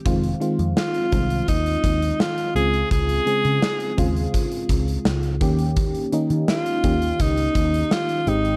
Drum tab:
HH |xxxx-xxxxxxx-xxx|xxxx-xxxxxxx-xxx|xxxx-xxxxxxx-xxx|
SD |----o-------o---|----o-------o---|----o-------o---|
BD |o-----o-o-o-----|o-----o-o-o---o-|o-----o-o-o-----|